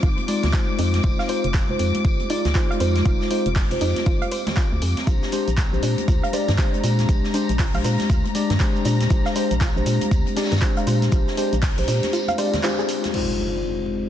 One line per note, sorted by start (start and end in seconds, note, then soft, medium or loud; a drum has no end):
0.00 0.16 G#1 medium
0.00 0.25 G#3 medium
0.00 13.10 G#3 medium
0.00 13.10 C4 medium
0.00 0.26 D#4 medium
0.00 1.00 D#4 medium
0.00 0.26 F4 medium
0.00 0.12 F4 medium
0.00 13.10 G4 medium
0.00 0.26 C5 medium
0.00 5.08 D6 medium
0.00 kick loud
0.00 closed hi-hat soft
0.00 tambourine medium
0.18 closed hi-hat soft
0.18 high conga medium
0.28 0.44 G#3 medium
0.28 0.44 D#4 medium
0.28 0.44 F4 medium
0.28 0.44 D5 loud
0.28 open hi-hat loud
0.28 tambourine medium
0.43 0.52 D2 loud
0.43 snare soft
0.43 closed hi-hat medium
0.43 high conga medium
0.43 low conga medium
0.53 1.01 G#3 medium
0.53 1.01 D#4 medium
0.53 1.02 F4 medium
0.53 1.02 C5 loud
0.53 kick loud
0.53 snare loud
0.53 clap loud
0.53 closed hi-hat medium
0.53 tambourine medium
0.79 1.01 F2 loud
0.79 0.85 D#4 medium
0.79 open hi-hat loud
0.79 tambourine medium
0.93 snare soft
0.93 closed hi-hat medium
0.93 high conga medium
1.03 1.17 F1 loud
1.03 1.26 G#3 medium
1.03 1.27 D#4 medium
1.03 1.10 F4 medium
1.03 5.03 F4 medium
1.03 1.27 F4 medium
1.03 1.27 C5 medium
1.03 kick loud
1.03 closed hi-hat medium
1.03 tambourine medium
1.19 1.23 F5 medium
1.19 snare medium
1.28 1.45 G#3 medium
1.28 1.45 D#4 medium
1.28 1.45 F4 medium
1.28 1.35 C5 medium
1.28 1.45 C5 loud
1.28 open hi-hat loud
1.28 tambourine medium
1.44 1.65 F1 medium
1.44 closed hi-hat medium
1.54 1.64 F4 medium
1.54 kick loud
1.54 snare loud
1.54 clap loud
1.54 closed hi-hat soft
1.54 tambourine medium
1.69 1.78 F1 medium
1.69 2.27 G#3 medium
1.69 2.27 D#4 medium
1.69 2.28 F4 medium
1.69 2.28 C5 medium
1.79 1.92 F2 medium
1.79 open hi-hat loud
1.79 tambourine medium
1.94 closed hi-hat soft
1.94 closed hi-hat medium
1.94 high conga medium
2.05 2.18 G#1 medium
2.05 kick loud
2.05 closed hi-hat soft
2.05 tambourine medium
2.19 closed hi-hat soft
2.19 high conga medium
2.29 2.46 G#3 loud
2.29 2.46 D#4 medium
2.29 2.36 D#4 medium
2.29 2.46 F4 medium
2.29 2.46 D5 loud
2.29 open hi-hat loud
2.29 tambourine medium
2.45 2.54 D2 loud
2.45 snare medium
2.45 closed hi-hat medium
2.45 high conga loud
2.45 low conga medium
2.55 3.03 G#3 medium
2.55 3.03 D#4 medium
2.55 2.61 F4 medium
2.55 3.03 F4 medium
2.55 3.03 C5 loud
2.55 kick loud
2.55 snare loud
2.55 clap loud
2.55 closed hi-hat medium
2.55 tambourine medium
2.70 2.74 F5 loud
2.70 closed hi-hat soft
2.80 3.02 F2 loud
2.80 2.87 C5 medium
2.80 open hi-hat loud
2.80 tambourine medium
2.95 snare soft
2.95 closed hi-hat medium
2.95 high conga medium
3.05 3.18 F1 loud
3.05 3.28 G#3 medium
3.05 3.28 D#4 medium
3.05 3.15 F4 medium
3.05 3.28 F4 medium
3.05 3.29 C5 medium
3.05 kick loud
3.05 closed hi-hat soft
3.05 tambourine medium
3.21 snare medium
3.30 3.47 G#3 medium
3.30 3.47 D#4 medium
3.30 3.47 F4 medium
3.30 3.47 C5 loud
3.30 open hi-hat loud
3.30 tambourine medium
3.46 3.67 F1 medium
3.46 closed hi-hat medium
3.56 kick loud
3.56 snare loud
3.56 clap loud
3.56 closed hi-hat soft
3.56 open hi-hat medium
3.70 3.80 F1 medium
3.70 4.29 G#3 medium
3.70 4.29 D#4 medium
3.70 4.29 F4 medium
3.70 4.30 C5 medium
3.70 open hi-hat medium
3.81 3.94 F2 medium
3.81 3.87 D#4 medium
3.81 open hi-hat loud
3.81 tambourine medium
3.96 snare soft
3.96 closed hi-hat medium
3.96 high conga medium
4.06 4.19 G#1 medium
4.06 4.13 F4 medium
4.06 kick loud
4.06 closed hi-hat soft
4.06 tambourine medium
4.22 4.26 F5 loud
4.22 closed hi-hat soft
4.22 high conga medium
4.31 4.38 C5 medium
4.31 open hi-hat loud
4.31 tambourine medium
4.46 snare medium
4.46 closed hi-hat medium
4.46 high conga loud
4.46 low conga medium
4.56 4.66 F4 medium
4.56 kick loud
4.56 snare loud
4.56 clap loud
4.56 closed hi-hat soft
4.56 tambourine medium
4.72 4.80 D2 medium
4.81 4.95 F2 medium
4.81 open hi-hat loud
4.81 tambourine medium
4.97 snare medium
4.97 closed hi-hat medium
4.97 high conga medium
5.07 5.20 A#1 loud
5.07 5.30 G#3 medium
5.07 5.30 D4 medium
5.07 13.10 D4 medium
5.07 5.17 F4 medium
5.07 5.30 G4 medium
5.07 5.30 C5 medium
5.07 13.15 A#5 medium
5.07 kick loud
5.07 closed hi-hat soft
5.07 tambourine medium
5.07 shaker soft
5.23 snare medium
5.23 shaker soft
5.32 5.48 G#3 medium
5.32 5.48 D4 medium
5.32 5.49 G4 medium
5.32 5.49 C5 loud
5.32 open hi-hat loud
5.32 tambourine medium
5.32 shaker medium
5.48 5.68 A#1 medium
5.48 closed hi-hat medium
5.48 shaker soft
5.57 kick loud
5.57 snare loud
5.57 clap loud
5.57 closed hi-hat soft
5.57 tambourine medium
5.57 shaker soft
5.72 5.81 A#1 medium
5.72 6.30 G#3 medium
5.72 6.31 D4 medium
5.72 6.31 G4 medium
5.72 6.31 C5 medium
5.72 shaker soft
5.82 5.96 A#2 medium
5.82 5.89 D4 medium
5.82 open hi-hat loud
5.82 tambourine medium
5.82 shaker medium
5.98 closed hi-hat soft
5.98 closed hi-hat medium
5.98 high conga medium
5.98 shaker soft
6.08 6.21 D2 medium
6.08 6.14 F4 medium
6.08 kick loud
6.08 closed hi-hat soft
6.08 tambourine medium
6.08 shaker soft
6.22 6.27 F5 loud
6.22 closed hi-hat soft
6.22 high conga medium
6.22 shaker soft
6.33 6.49 G#3 medium
6.33 6.49 D4 medium
6.33 6.49 G4 medium
6.33 6.40 C5 medium
6.33 6.50 D5 loud
6.33 open hi-hat loud
6.33 tambourine medium
6.33 shaker medium
6.48 6.57 G2 loud
6.48 snare medium
6.48 closed hi-hat medium
6.48 high conga medium
6.48 low conga medium
6.48 shaker soft
6.58 7.06 G#3 medium
6.58 7.06 D4 medium
6.58 6.68 F4 medium
6.58 7.07 G4 medium
6.58 7.07 C5 loud
6.58 kick loud
6.58 snare loud
6.58 clap loud
6.58 closed hi-hat soft
6.58 tambourine medium
6.58 shaker soft
6.74 closed hi-hat soft
6.74 shaker soft
6.83 7.06 A#2 loud
6.83 open hi-hat loud
6.83 tambourine medium
6.83 shaker medium
6.99 snare soft
6.99 closed hi-hat medium
6.99 high conga medium
6.99 shaker soft
7.08 7.22 A#1 loud
7.08 7.31 G#3 medium
7.08 7.32 D4 medium
7.08 7.32 G4 medium
7.08 7.32 C5 medium
7.08 kick loud
7.08 closed hi-hat medium
7.08 tambourine medium
7.08 shaker soft
7.24 snare soft
7.24 shaker soft
7.34 7.50 G#3 medium
7.34 7.50 D4 medium
7.34 7.40 D4 medium
7.34 7.50 G4 medium
7.34 7.50 C5 loud
7.34 open hi-hat loud
7.34 tambourine medium
7.34 shaker medium
7.49 7.70 A#1 medium
7.49 closed hi-hat medium
7.49 shaker soft
7.59 7.66 F4 medium
7.59 kick loud
7.59 snare loud
7.59 clap loud
7.59 closed hi-hat medium
7.59 open hi-hat medium
7.59 shaker soft
7.74 7.83 A#1 medium
7.74 8.32 G#3 medium
7.74 8.32 D4 medium
7.74 8.33 G4 medium
7.74 8.33 C5 medium
7.74 7.79 F5 loud
7.74 open hi-hat medium
7.74 shaker soft
7.84 7.97 A#2 medium
7.84 7.91 C5 medium
7.84 open hi-hat loud
7.84 tambourine medium
7.84 shaker medium
8.00 snare soft
8.00 closed hi-hat medium
8.00 high conga medium
8.00 shaker soft
8.10 8.23 D2 medium
8.10 8.19 F4 medium
8.10 kick loud
8.10 closed hi-hat medium
8.10 tambourine medium
8.10 shaker soft
8.25 closed hi-hat soft
8.25 high conga medium
8.25 shaker soft
8.34 8.51 G#3 medium
8.34 8.51 D4 medium
8.34 8.51 G4 medium
8.34 8.51 D5 loud
8.34 open hi-hat loud
8.34 tambourine medium
8.34 shaker medium
8.50 8.59 G2 loud
8.50 snare medium
8.50 closed hi-hat medium
8.50 high conga medium
8.50 low conga medium
8.50 shaker soft
8.60 9.08 G#3 loud
8.60 9.08 D4 medium
8.60 9.08 G4 medium
8.60 9.08 C5 loud
8.60 kick loud
8.60 snare loud
8.60 clap loud
8.60 closed hi-hat medium
8.60 tambourine medium
8.60 shaker soft
8.76 shaker soft
8.85 9.07 A#2 loud
8.85 8.92 D4 medium
8.85 open hi-hat loud
8.85 tambourine medium
8.85 shaker medium
9.00 snare soft
9.00 closed hi-hat medium
9.00 high conga medium
9.00 shaker soft
9.10 9.23 A#1 loud
9.10 9.33 G#3 medium
9.10 9.33 D4 medium
9.10 9.17 F4 medium
9.10 9.33 G4 medium
9.10 9.34 C5 medium
9.10 kick loud
9.10 closed hi-hat medium
9.10 tambourine medium
9.10 shaker soft
9.25 9.30 F5 loud
9.25 snare medium
9.25 shaker soft
9.35 9.52 G#3 medium
9.35 9.52 D4 medium
9.35 9.52 G4 medium
9.35 9.42 C5 medium
9.35 9.52 C5 loud
9.35 open hi-hat loud
9.35 tambourine medium
9.35 shaker medium
9.51 9.72 A#1 medium
9.51 closed hi-hat medium
9.51 shaker soft
9.61 9.70 F4 medium
9.61 kick loud
9.61 snare loud
9.61 clap loud
9.61 closed hi-hat medium
9.61 tambourine medium
9.61 shaker soft
9.75 9.85 A#1 medium
9.75 10.34 G#3 medium
9.75 10.34 D4 medium
9.75 10.34 G4 medium
9.75 10.35 C5 medium
9.75 shaker soft
9.86 9.99 A#2 medium
9.86 open hi-hat medium
9.86 tambourine medium
9.86 shaker medium
10.01 closed hi-hat medium
10.01 closed hi-hat soft
10.01 high conga medium
10.01 shaker soft
10.11 10.24 D2 medium
10.11 kick loud
10.11 closed hi-hat medium
10.11 tambourine medium
10.11 shaker soft
10.26 closed hi-hat soft
10.26 high conga medium
10.26 shaker soft
10.36 10.52 G#3 loud
10.36 10.53 D4 medium
10.36 10.43 D4 medium
10.36 10.53 G4 medium
10.36 10.53 D5 loud
10.36 snare medium
10.36 open hi-hat loud
10.36 tambourine medium
10.36 shaker medium
10.44 snare medium
10.44 tambourine medium
10.51 10.60 G2 loud
10.51 snare medium
10.51 closed hi-hat medium
10.51 tambourine medium
10.51 high conga medium
10.51 low conga medium
10.51 shaker soft
10.56 snare medium
10.56 tambourine medium
10.61 11.10 G#3 loud
10.61 11.10 D4 medium
10.61 10.68 F4 medium
10.61 11.10 G4 medium
10.61 11.10 C5 loud
10.61 kick loud
10.61 snare loud
10.61 clap loud
10.61 closed hi-hat medium
10.61 shaker soft
10.77 10.81 F5 loud
10.77 closed hi-hat soft
10.77 shaker soft
10.87 11.09 A#2 loud
10.87 10.93 C5 medium
10.87 open hi-hat medium
10.87 tambourine medium
10.87 shaker medium
11.02 snare soft
11.02 closed hi-hat medium
11.02 high conga medium
11.02 shaker soft
11.12 11.25 A#1 loud
11.12 11.35 G#3 medium
11.12 11.35 D4 medium
11.12 11.22 F4 medium
11.12 11.35 G4 medium
11.12 11.35 C5 medium
11.12 kick loud
11.12 closed hi-hat medium
11.12 tambourine medium
11.12 shaker soft
11.28 snare medium
11.28 shaker soft
11.37 11.53 G#3 loud
11.37 11.53 D4 medium
11.37 11.54 G4 medium
11.37 11.54 C5 loud
11.37 open hi-hat loud
11.37 tambourine medium
11.37 shaker medium
11.53 11.73 A#1 medium
11.53 closed hi-hat medium
11.53 shaker soft
11.62 kick loud
11.62 snare loud
11.62 clap loud
11.62 closed hi-hat medium
11.62 open hi-hat medium
11.62 shaker soft
11.77 11.86 A#1 medium
11.77 12.35 G#3 medium
11.77 12.36 D4 medium
11.77 12.36 G4 medium
11.77 12.36 C5 medium
11.77 open hi-hat medium
11.77 shaker soft
11.88 12.01 A#2 medium
11.88 11.94 D4 medium
11.88 open hi-hat loud
11.88 tambourine medium
11.88 shaker medium
12.03 snare soft
12.03 closed hi-hat medium
12.03 high conga medium
12.03 shaker soft
12.13 12.19 F4 medium
12.13 closed hi-hat medium
12.13 tambourine medium
12.13 shaker soft
12.28 12.32 F5 loud
12.28 closed hi-hat soft
12.28 high conga medium
12.28 shaker soft
12.38 12.54 G#3 loud
12.38 12.54 D4 medium
12.38 12.54 G4 medium
12.38 12.45 C5 medium
12.38 12.55 D5 loud
12.38 open hi-hat loud
12.38 tambourine medium
12.38 shaker medium
12.54 snare medium
12.54 closed hi-hat medium
12.54 high conga medium
12.54 low conga medium
12.54 shaker soft
12.63 13.11 G#3 medium
12.63 13.11 D4 medium
12.63 12.70 F4 medium
12.63 13.12 G4 medium
12.63 13.12 C5 loud
12.63 snare loud
12.63 clap loud
12.63 closed hi-hat medium
12.63 tambourine medium
12.63 shaker soft
12.79 12.85 G#4 medium
12.79 shaker soft
12.89 open hi-hat loud
12.89 tambourine medium
12.89 shaker medium
13.04 snare medium
13.04 closed hi-hat medium
13.04 high conga medium
13.04 shaker soft
13.13 14.09 F2 medium
13.13 14.09 G#3 medium
13.13 14.09 C4 medium
13.13 14.09 D#4 medium
13.13 14.09 F4 medium
13.13 14.09 G4 medium
13.13 14.09 C5 medium
13.13 crash medium
13.13 impact medium